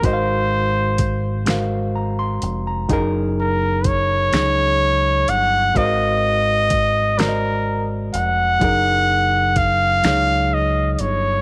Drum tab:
HH |x-xx-x|x-xx-x|x-xx-x|x-xx-x|
SD |---o--|---o--|---o--|---o--|
BD |o-o---|o-o---|o-o---|o-o---|